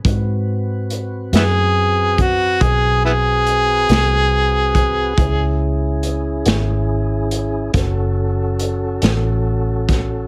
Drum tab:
HH |x-xx-xx-xx-x|x-xx-xx-xx-x|
SD |---o-----o--|---o--o--o-o|
BD |o----oo----o|o-----o----o|